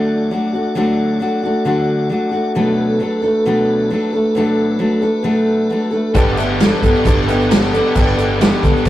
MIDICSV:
0, 0, Header, 1, 7, 480
1, 0, Start_track
1, 0, Tempo, 450113
1, 799, Time_signature, 4, 2, 24, 8
1, 9483, End_track
2, 0, Start_track
2, 0, Title_t, "Grand piano"
2, 0, Program_c, 0, 0
2, 6550, Note_on_c, 0, 71, 78
2, 6552, Note_on_c, 0, 79, 96
2, 6553, Note_on_c, 0, 69, 85
2, 6553, Note_on_c, 0, 74, 74
2, 6719, Note_off_c, 0, 71, 0
2, 6720, Note_off_c, 0, 79, 0
2, 6721, Note_off_c, 0, 69, 0
2, 6721, Note_off_c, 0, 74, 0
2, 6797, Note_on_c, 0, 76, 79
2, 6798, Note_on_c, 0, 69, 72
2, 6800, Note_on_c, 0, 71, 65
2, 6800, Note_on_c, 0, 74, 72
2, 7459, Note_off_c, 0, 69, 0
2, 7459, Note_off_c, 0, 76, 0
2, 7460, Note_off_c, 0, 71, 0
2, 7460, Note_off_c, 0, 74, 0
2, 7756, Note_on_c, 0, 69, 81
2, 7761, Note_on_c, 0, 71, 82
2, 7763, Note_on_c, 0, 79, 91
2, 7764, Note_on_c, 0, 74, 74
2, 8253, Note_off_c, 0, 69, 0
2, 8255, Note_off_c, 0, 71, 0
2, 8257, Note_off_c, 0, 74, 0
2, 8257, Note_off_c, 0, 79, 0
2, 8492, Note_on_c, 0, 79, 97
2, 8493, Note_on_c, 0, 69, 87
2, 8495, Note_on_c, 0, 71, 81
2, 8496, Note_on_c, 0, 74, 80
2, 8651, Note_off_c, 0, 79, 0
2, 8652, Note_off_c, 0, 69, 0
2, 8653, Note_off_c, 0, 71, 0
2, 8653, Note_off_c, 0, 74, 0
2, 8726, Note_on_c, 0, 69, 76
2, 8726, Note_on_c, 0, 79, 84
2, 8728, Note_on_c, 0, 71, 66
2, 8730, Note_on_c, 0, 74, 67
2, 9384, Note_off_c, 0, 69, 0
2, 9384, Note_off_c, 0, 79, 0
2, 9385, Note_off_c, 0, 71, 0
2, 9386, Note_off_c, 0, 74, 0
2, 9483, End_track
3, 0, Start_track
3, 0, Title_t, "Tonewheel organ"
3, 0, Program_c, 1, 16
3, 0, Note_on_c, 1, 62, 68
3, 0, Note_on_c, 1, 66, 69
3, 0, Note_on_c, 1, 69, 69
3, 0, Note_on_c, 1, 74, 73
3, 2687, Note_off_c, 1, 66, 0
3, 2690, Note_off_c, 1, 74, 0
3, 2691, Note_off_c, 1, 62, 0
3, 2692, Note_off_c, 1, 69, 0
3, 2729, Note_on_c, 1, 66, 77
3, 2735, Note_on_c, 1, 69, 72
3, 2739, Note_on_c, 1, 62, 76
3, 2740, Note_on_c, 1, 71, 68
3, 6527, Note_off_c, 1, 66, 0
3, 6529, Note_off_c, 1, 69, 0
3, 6532, Note_off_c, 1, 62, 0
3, 6532, Note_off_c, 1, 71, 0
3, 6563, Note_on_c, 1, 62, 73
3, 6566, Note_on_c, 1, 67, 76
3, 6568, Note_on_c, 1, 69, 75
3, 6571, Note_on_c, 1, 71, 70
3, 9483, Note_off_c, 1, 62, 0
3, 9483, Note_off_c, 1, 67, 0
3, 9483, Note_off_c, 1, 69, 0
3, 9483, Note_off_c, 1, 71, 0
3, 9483, End_track
4, 0, Start_track
4, 0, Title_t, "Steel-string acoustic guitar"
4, 0, Program_c, 2, 25
4, 0, Note_on_c, 2, 50, 81
4, 0, Note_on_c, 2, 54, 93
4, 0, Note_on_c, 2, 57, 93
4, 0, Note_on_c, 2, 62, 94
4, 0, Note_on_c, 2, 66, 83
4, 321, Note_off_c, 2, 50, 0
4, 325, Note_off_c, 2, 54, 0
4, 329, Note_on_c, 2, 54, 63
4, 330, Note_off_c, 2, 57, 0
4, 334, Note_on_c, 2, 57, 65
4, 339, Note_off_c, 2, 62, 0
4, 343, Note_on_c, 2, 62, 70
4, 352, Note_off_c, 2, 66, 0
4, 357, Note_on_c, 2, 66, 80
4, 554, Note_off_c, 2, 66, 0
4, 564, Note_off_c, 2, 54, 0
4, 566, Note_off_c, 2, 57, 0
4, 567, Note_on_c, 2, 66, 55
4, 571, Note_off_c, 2, 62, 0
4, 585, Note_on_c, 2, 62, 52
4, 598, Note_on_c, 2, 57, 48
4, 801, Note_on_c, 2, 54, 95
4, 802, Note_off_c, 2, 57, 0
4, 802, Note_off_c, 2, 66, 0
4, 807, Note_on_c, 2, 50, 91
4, 812, Note_off_c, 2, 62, 0
4, 815, Note_on_c, 2, 57, 100
4, 819, Note_on_c, 2, 66, 108
4, 824, Note_on_c, 2, 62, 99
4, 1272, Note_off_c, 2, 54, 0
4, 1276, Note_on_c, 2, 54, 70
4, 1282, Note_off_c, 2, 50, 0
4, 1282, Note_off_c, 2, 57, 0
4, 1286, Note_on_c, 2, 57, 69
4, 1293, Note_off_c, 2, 62, 0
4, 1296, Note_off_c, 2, 66, 0
4, 1297, Note_on_c, 2, 62, 78
4, 1300, Note_on_c, 2, 66, 82
4, 1513, Note_off_c, 2, 66, 0
4, 1517, Note_off_c, 2, 54, 0
4, 1522, Note_off_c, 2, 57, 0
4, 1526, Note_on_c, 2, 66, 63
4, 1527, Note_off_c, 2, 62, 0
4, 1551, Note_on_c, 2, 62, 66
4, 1562, Note_on_c, 2, 57, 58
4, 1757, Note_off_c, 2, 57, 0
4, 1760, Note_on_c, 2, 50, 88
4, 1761, Note_off_c, 2, 66, 0
4, 1765, Note_off_c, 2, 62, 0
4, 1768, Note_on_c, 2, 54, 88
4, 1770, Note_on_c, 2, 57, 86
4, 1778, Note_on_c, 2, 62, 94
4, 1784, Note_on_c, 2, 66, 92
4, 2229, Note_off_c, 2, 54, 0
4, 2233, Note_on_c, 2, 54, 71
4, 2235, Note_off_c, 2, 57, 0
4, 2238, Note_off_c, 2, 50, 0
4, 2240, Note_on_c, 2, 57, 76
4, 2251, Note_off_c, 2, 62, 0
4, 2255, Note_on_c, 2, 62, 72
4, 2260, Note_off_c, 2, 66, 0
4, 2265, Note_on_c, 2, 66, 81
4, 2455, Note_off_c, 2, 66, 0
4, 2467, Note_on_c, 2, 66, 61
4, 2475, Note_off_c, 2, 54, 0
4, 2476, Note_off_c, 2, 62, 0
4, 2478, Note_off_c, 2, 57, 0
4, 2489, Note_on_c, 2, 62, 51
4, 2502, Note_on_c, 2, 57, 48
4, 2712, Note_off_c, 2, 66, 0
4, 2719, Note_off_c, 2, 57, 0
4, 2720, Note_off_c, 2, 62, 0
4, 2720, Note_on_c, 2, 47, 95
4, 2725, Note_on_c, 2, 54, 99
4, 2732, Note_on_c, 2, 57, 93
4, 2732, Note_on_c, 2, 62, 101
4, 2732, Note_on_c, 2, 69, 99
4, 3181, Note_off_c, 2, 54, 0
4, 3194, Note_on_c, 2, 54, 65
4, 3198, Note_off_c, 2, 47, 0
4, 3199, Note_off_c, 2, 57, 0
4, 3204, Note_on_c, 2, 57, 72
4, 3212, Note_off_c, 2, 62, 0
4, 3216, Note_on_c, 2, 62, 74
4, 3222, Note_off_c, 2, 69, 0
4, 3226, Note_on_c, 2, 69, 79
4, 3421, Note_off_c, 2, 69, 0
4, 3433, Note_off_c, 2, 62, 0
4, 3434, Note_on_c, 2, 69, 65
4, 3435, Note_off_c, 2, 54, 0
4, 3440, Note_off_c, 2, 57, 0
4, 3446, Note_on_c, 2, 62, 57
4, 3468, Note_on_c, 2, 57, 56
4, 3675, Note_off_c, 2, 69, 0
4, 3681, Note_off_c, 2, 62, 0
4, 3686, Note_on_c, 2, 47, 90
4, 3691, Note_on_c, 2, 54, 98
4, 3692, Note_off_c, 2, 57, 0
4, 3704, Note_on_c, 2, 57, 91
4, 3704, Note_on_c, 2, 69, 93
4, 3707, Note_on_c, 2, 62, 89
4, 4149, Note_off_c, 2, 54, 0
4, 4161, Note_off_c, 2, 47, 0
4, 4162, Note_on_c, 2, 54, 69
4, 4164, Note_off_c, 2, 57, 0
4, 4168, Note_on_c, 2, 57, 75
4, 4177, Note_off_c, 2, 62, 0
4, 4181, Note_on_c, 2, 62, 74
4, 4189, Note_off_c, 2, 69, 0
4, 4193, Note_on_c, 2, 69, 78
4, 4391, Note_off_c, 2, 69, 0
4, 4400, Note_off_c, 2, 54, 0
4, 4403, Note_off_c, 2, 57, 0
4, 4403, Note_on_c, 2, 69, 58
4, 4406, Note_off_c, 2, 62, 0
4, 4418, Note_on_c, 2, 62, 51
4, 4433, Note_on_c, 2, 57, 54
4, 4639, Note_on_c, 2, 47, 95
4, 4640, Note_off_c, 2, 69, 0
4, 4643, Note_off_c, 2, 57, 0
4, 4648, Note_off_c, 2, 62, 0
4, 4653, Note_on_c, 2, 54, 93
4, 4655, Note_on_c, 2, 57, 98
4, 4665, Note_on_c, 2, 62, 96
4, 4665, Note_on_c, 2, 69, 99
4, 5095, Note_off_c, 2, 54, 0
4, 5107, Note_on_c, 2, 54, 79
4, 5110, Note_off_c, 2, 57, 0
4, 5115, Note_on_c, 2, 57, 71
4, 5118, Note_off_c, 2, 47, 0
4, 5121, Note_off_c, 2, 62, 0
4, 5126, Note_on_c, 2, 62, 71
4, 5127, Note_off_c, 2, 69, 0
4, 5132, Note_on_c, 2, 69, 80
4, 5341, Note_off_c, 2, 69, 0
4, 5349, Note_off_c, 2, 62, 0
4, 5352, Note_off_c, 2, 54, 0
4, 5354, Note_on_c, 2, 69, 70
4, 5356, Note_off_c, 2, 57, 0
4, 5362, Note_on_c, 2, 62, 59
4, 5371, Note_on_c, 2, 57, 58
4, 5575, Note_off_c, 2, 57, 0
4, 5575, Note_on_c, 2, 47, 79
4, 5583, Note_off_c, 2, 62, 0
4, 5583, Note_off_c, 2, 69, 0
4, 5588, Note_on_c, 2, 54, 83
4, 5588, Note_on_c, 2, 57, 93
4, 5595, Note_on_c, 2, 69, 87
4, 5596, Note_on_c, 2, 62, 94
4, 6065, Note_off_c, 2, 54, 0
4, 6067, Note_off_c, 2, 47, 0
4, 6078, Note_off_c, 2, 57, 0
4, 6078, Note_on_c, 2, 54, 68
4, 6083, Note_on_c, 2, 57, 72
4, 6098, Note_off_c, 2, 62, 0
4, 6102, Note_on_c, 2, 62, 79
4, 6104, Note_off_c, 2, 69, 0
4, 6108, Note_on_c, 2, 69, 72
4, 6286, Note_off_c, 2, 69, 0
4, 6299, Note_on_c, 2, 69, 57
4, 6307, Note_off_c, 2, 62, 0
4, 6318, Note_off_c, 2, 54, 0
4, 6320, Note_on_c, 2, 62, 54
4, 6321, Note_off_c, 2, 57, 0
4, 6336, Note_on_c, 2, 57, 49
4, 6549, Note_off_c, 2, 69, 0
4, 6549, Note_on_c, 2, 55, 93
4, 6550, Note_off_c, 2, 57, 0
4, 6551, Note_off_c, 2, 62, 0
4, 6555, Note_on_c, 2, 59, 96
4, 6564, Note_on_c, 2, 62, 100
4, 6574, Note_on_c, 2, 69, 102
4, 7029, Note_off_c, 2, 55, 0
4, 7033, Note_off_c, 2, 59, 0
4, 7033, Note_on_c, 2, 55, 69
4, 7042, Note_off_c, 2, 62, 0
4, 7045, Note_on_c, 2, 59, 77
4, 7047, Note_off_c, 2, 69, 0
4, 7055, Note_on_c, 2, 62, 67
4, 7069, Note_on_c, 2, 69, 79
4, 7255, Note_off_c, 2, 69, 0
4, 7268, Note_on_c, 2, 69, 65
4, 7276, Note_off_c, 2, 55, 0
4, 7282, Note_off_c, 2, 59, 0
4, 7282, Note_off_c, 2, 62, 0
4, 7295, Note_on_c, 2, 62, 54
4, 7300, Note_on_c, 2, 59, 56
4, 7507, Note_on_c, 2, 55, 89
4, 7511, Note_off_c, 2, 59, 0
4, 7514, Note_off_c, 2, 69, 0
4, 7519, Note_off_c, 2, 62, 0
4, 7524, Note_on_c, 2, 59, 83
4, 7532, Note_on_c, 2, 62, 90
4, 7538, Note_on_c, 2, 69, 93
4, 8002, Note_off_c, 2, 59, 0
4, 8006, Note_off_c, 2, 62, 0
4, 8007, Note_off_c, 2, 55, 0
4, 8009, Note_off_c, 2, 69, 0
4, 8012, Note_on_c, 2, 55, 77
4, 8027, Note_on_c, 2, 59, 75
4, 8043, Note_on_c, 2, 62, 68
4, 8047, Note_on_c, 2, 69, 76
4, 8231, Note_off_c, 2, 69, 0
4, 8243, Note_on_c, 2, 69, 60
4, 8246, Note_off_c, 2, 55, 0
4, 8254, Note_off_c, 2, 59, 0
4, 8261, Note_off_c, 2, 62, 0
4, 8274, Note_on_c, 2, 62, 50
4, 8279, Note_on_c, 2, 59, 51
4, 8482, Note_off_c, 2, 69, 0
4, 8490, Note_off_c, 2, 59, 0
4, 8492, Note_off_c, 2, 62, 0
4, 8492, Note_on_c, 2, 55, 95
4, 8503, Note_on_c, 2, 59, 100
4, 8505, Note_on_c, 2, 62, 97
4, 8517, Note_on_c, 2, 69, 107
4, 8957, Note_off_c, 2, 55, 0
4, 8962, Note_on_c, 2, 55, 72
4, 8968, Note_off_c, 2, 59, 0
4, 8973, Note_off_c, 2, 62, 0
4, 8979, Note_off_c, 2, 69, 0
4, 8981, Note_on_c, 2, 59, 77
4, 8990, Note_on_c, 2, 62, 81
4, 8993, Note_on_c, 2, 69, 77
4, 9190, Note_off_c, 2, 69, 0
4, 9197, Note_off_c, 2, 62, 0
4, 9201, Note_off_c, 2, 55, 0
4, 9202, Note_on_c, 2, 69, 66
4, 9210, Note_on_c, 2, 62, 56
4, 9211, Note_off_c, 2, 59, 0
4, 9222, Note_on_c, 2, 59, 60
4, 9433, Note_off_c, 2, 59, 0
4, 9440, Note_on_c, 2, 55, 86
4, 9442, Note_off_c, 2, 69, 0
4, 9446, Note_off_c, 2, 62, 0
4, 9446, Note_on_c, 2, 59, 86
4, 9483, Note_off_c, 2, 55, 0
4, 9483, Note_off_c, 2, 59, 0
4, 9483, End_track
5, 0, Start_track
5, 0, Title_t, "Overdriven electric guitar"
5, 0, Program_c, 3, 29
5, 6548, Note_on_c, 3, 43, 90
5, 6551, Note_on_c, 3, 50, 90
5, 6558, Note_on_c, 3, 55, 97
5, 6562, Note_on_c, 3, 59, 96
5, 6563, Note_on_c, 3, 62, 95
5, 6569, Note_on_c, 3, 67, 100
5, 6795, Note_off_c, 3, 67, 0
5, 6799, Note_on_c, 3, 67, 79
5, 6803, Note_off_c, 3, 62, 0
5, 6806, Note_off_c, 3, 59, 0
5, 6807, Note_on_c, 3, 62, 72
5, 6810, Note_on_c, 3, 59, 60
5, 6813, Note_off_c, 3, 55, 0
5, 6817, Note_on_c, 3, 55, 64
5, 7035, Note_off_c, 3, 50, 0
5, 7036, Note_off_c, 3, 55, 0
5, 7040, Note_on_c, 3, 55, 81
5, 7046, Note_off_c, 3, 59, 0
5, 7050, Note_on_c, 3, 59, 74
5, 7052, Note_off_c, 3, 62, 0
5, 7056, Note_off_c, 3, 67, 0
5, 7056, Note_on_c, 3, 62, 83
5, 7060, Note_on_c, 3, 67, 82
5, 7517, Note_off_c, 3, 43, 0
5, 7518, Note_off_c, 3, 59, 0
5, 7521, Note_on_c, 3, 43, 92
5, 7525, Note_off_c, 3, 55, 0
5, 7525, Note_on_c, 3, 50, 94
5, 7526, Note_off_c, 3, 62, 0
5, 7530, Note_on_c, 3, 55, 99
5, 7531, Note_on_c, 3, 59, 106
5, 7535, Note_off_c, 3, 67, 0
5, 7539, Note_on_c, 3, 62, 113
5, 7539, Note_on_c, 3, 67, 110
5, 7748, Note_off_c, 3, 62, 0
5, 7748, Note_off_c, 3, 67, 0
5, 7753, Note_off_c, 3, 59, 0
5, 7753, Note_on_c, 3, 67, 75
5, 7761, Note_on_c, 3, 62, 75
5, 7766, Note_on_c, 3, 59, 66
5, 7768, Note_off_c, 3, 55, 0
5, 7773, Note_on_c, 3, 55, 69
5, 7989, Note_off_c, 3, 55, 0
5, 7993, Note_off_c, 3, 59, 0
5, 7993, Note_on_c, 3, 55, 70
5, 7999, Note_off_c, 3, 62, 0
5, 8001, Note_off_c, 3, 43, 0
5, 8003, Note_off_c, 3, 50, 0
5, 8006, Note_on_c, 3, 59, 84
5, 8011, Note_off_c, 3, 67, 0
5, 8012, Note_on_c, 3, 62, 74
5, 8015, Note_on_c, 3, 67, 80
5, 8234, Note_off_c, 3, 67, 0
5, 8235, Note_off_c, 3, 62, 0
5, 8238, Note_off_c, 3, 59, 0
5, 8239, Note_on_c, 3, 67, 76
5, 8247, Note_on_c, 3, 62, 74
5, 8250, Note_on_c, 3, 59, 66
5, 8252, Note_off_c, 3, 55, 0
5, 8256, Note_on_c, 3, 55, 62
5, 8471, Note_on_c, 3, 43, 93
5, 8474, Note_off_c, 3, 59, 0
5, 8477, Note_off_c, 3, 55, 0
5, 8479, Note_on_c, 3, 50, 90
5, 8480, Note_off_c, 3, 62, 0
5, 8481, Note_on_c, 3, 55, 88
5, 8487, Note_on_c, 3, 59, 90
5, 8492, Note_off_c, 3, 67, 0
5, 8493, Note_on_c, 3, 62, 103
5, 8496, Note_on_c, 3, 67, 100
5, 8705, Note_off_c, 3, 62, 0
5, 8710, Note_off_c, 3, 67, 0
5, 8714, Note_on_c, 3, 67, 80
5, 8716, Note_off_c, 3, 59, 0
5, 8718, Note_on_c, 3, 62, 69
5, 8728, Note_off_c, 3, 55, 0
5, 8729, Note_on_c, 3, 59, 71
5, 8732, Note_on_c, 3, 55, 57
5, 8944, Note_off_c, 3, 55, 0
5, 8947, Note_off_c, 3, 59, 0
5, 8948, Note_on_c, 3, 55, 79
5, 8951, Note_off_c, 3, 62, 0
5, 8956, Note_off_c, 3, 43, 0
5, 8960, Note_off_c, 3, 50, 0
5, 8960, Note_on_c, 3, 59, 78
5, 8964, Note_off_c, 3, 67, 0
5, 8964, Note_on_c, 3, 62, 78
5, 8968, Note_on_c, 3, 67, 81
5, 9436, Note_off_c, 3, 59, 0
5, 9437, Note_on_c, 3, 43, 93
5, 9438, Note_off_c, 3, 62, 0
5, 9439, Note_on_c, 3, 50, 99
5, 9442, Note_off_c, 3, 55, 0
5, 9446, Note_on_c, 3, 55, 98
5, 9449, Note_on_c, 3, 59, 113
5, 9451, Note_on_c, 3, 62, 104
5, 9453, Note_off_c, 3, 67, 0
5, 9483, Note_off_c, 3, 43, 0
5, 9483, Note_off_c, 3, 50, 0
5, 9483, Note_off_c, 3, 55, 0
5, 9483, Note_off_c, 3, 59, 0
5, 9483, Note_off_c, 3, 62, 0
5, 9483, End_track
6, 0, Start_track
6, 0, Title_t, "Fingered electric bass"
6, 0, Program_c, 4, 33
6, 6558, Note_on_c, 4, 31, 97
6, 7156, Note_off_c, 4, 31, 0
6, 7276, Note_on_c, 4, 43, 96
6, 7377, Note_off_c, 4, 43, 0
6, 7518, Note_on_c, 4, 31, 105
6, 8316, Note_off_c, 4, 31, 0
6, 8478, Note_on_c, 4, 31, 106
6, 9076, Note_off_c, 4, 31, 0
6, 9203, Note_on_c, 4, 38, 93
6, 9301, Note_off_c, 4, 38, 0
6, 9440, Note_on_c, 4, 38, 106
6, 9483, Note_off_c, 4, 38, 0
6, 9483, End_track
7, 0, Start_track
7, 0, Title_t, "Drums"
7, 6554, Note_on_c, 9, 49, 77
7, 6556, Note_on_c, 9, 36, 110
7, 6568, Note_on_c, 9, 82, 84
7, 6661, Note_off_c, 9, 49, 0
7, 6662, Note_off_c, 9, 36, 0
7, 6675, Note_off_c, 9, 82, 0
7, 6795, Note_on_c, 9, 49, 67
7, 6818, Note_on_c, 9, 82, 68
7, 6902, Note_off_c, 9, 49, 0
7, 6924, Note_off_c, 9, 82, 0
7, 7040, Note_on_c, 9, 49, 90
7, 7045, Note_on_c, 9, 38, 108
7, 7050, Note_on_c, 9, 82, 77
7, 7146, Note_off_c, 9, 49, 0
7, 7152, Note_off_c, 9, 38, 0
7, 7157, Note_off_c, 9, 82, 0
7, 7278, Note_on_c, 9, 36, 90
7, 7285, Note_on_c, 9, 49, 68
7, 7295, Note_on_c, 9, 82, 73
7, 7385, Note_off_c, 9, 36, 0
7, 7392, Note_off_c, 9, 49, 0
7, 7401, Note_off_c, 9, 82, 0
7, 7412, Note_on_c, 9, 82, 26
7, 7519, Note_off_c, 9, 82, 0
7, 7521, Note_on_c, 9, 36, 117
7, 7522, Note_on_c, 9, 49, 89
7, 7537, Note_on_c, 9, 82, 84
7, 7627, Note_off_c, 9, 36, 0
7, 7629, Note_off_c, 9, 49, 0
7, 7644, Note_off_c, 9, 82, 0
7, 7768, Note_on_c, 9, 49, 74
7, 7778, Note_on_c, 9, 82, 71
7, 7875, Note_off_c, 9, 49, 0
7, 7884, Note_off_c, 9, 82, 0
7, 7897, Note_on_c, 9, 82, 28
7, 8004, Note_off_c, 9, 82, 0
7, 8009, Note_on_c, 9, 49, 100
7, 8011, Note_on_c, 9, 82, 89
7, 8014, Note_on_c, 9, 38, 127
7, 8116, Note_off_c, 9, 49, 0
7, 8118, Note_off_c, 9, 82, 0
7, 8121, Note_off_c, 9, 38, 0
7, 8259, Note_on_c, 9, 49, 68
7, 8259, Note_on_c, 9, 82, 62
7, 8366, Note_off_c, 9, 49, 0
7, 8366, Note_off_c, 9, 82, 0
7, 8483, Note_on_c, 9, 49, 90
7, 8484, Note_on_c, 9, 36, 109
7, 8485, Note_on_c, 9, 82, 90
7, 8590, Note_off_c, 9, 36, 0
7, 8590, Note_off_c, 9, 49, 0
7, 8592, Note_off_c, 9, 82, 0
7, 8729, Note_on_c, 9, 49, 63
7, 8736, Note_on_c, 9, 82, 68
7, 8836, Note_off_c, 9, 49, 0
7, 8843, Note_off_c, 9, 82, 0
7, 8968, Note_on_c, 9, 49, 83
7, 8973, Note_on_c, 9, 38, 116
7, 8977, Note_on_c, 9, 82, 91
7, 9075, Note_off_c, 9, 49, 0
7, 9080, Note_off_c, 9, 38, 0
7, 9083, Note_off_c, 9, 82, 0
7, 9205, Note_on_c, 9, 36, 96
7, 9213, Note_on_c, 9, 49, 65
7, 9220, Note_on_c, 9, 82, 75
7, 9311, Note_off_c, 9, 36, 0
7, 9319, Note_off_c, 9, 49, 0
7, 9327, Note_off_c, 9, 82, 0
7, 9348, Note_on_c, 9, 82, 28
7, 9440, Note_on_c, 9, 49, 83
7, 9443, Note_on_c, 9, 36, 120
7, 9454, Note_off_c, 9, 82, 0
7, 9483, Note_off_c, 9, 36, 0
7, 9483, Note_off_c, 9, 49, 0
7, 9483, End_track
0, 0, End_of_file